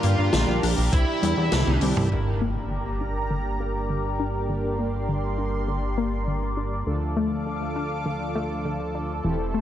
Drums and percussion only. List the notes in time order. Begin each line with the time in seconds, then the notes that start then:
0.03 closed hi-hat
0.33 snare, closed hi-hat
0.63 open hi-hat
0.93 kick, closed hi-hat
1.23 closed hi-hat
1.52 snare, closed hi-hat, high tom
1.67 high tom
1.81 open hi-hat
1.97 mid tom